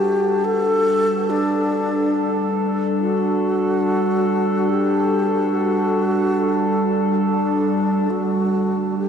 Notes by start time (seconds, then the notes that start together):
Already playing: G3 D4 G4 A4 B4 F#5 A5
0.45 A4
1.30 D4
2.99 F#4
4.69 G4
5.55 F#4
7.24 D4
8.10 F#4
8.49 B4 F#5
8.98 G4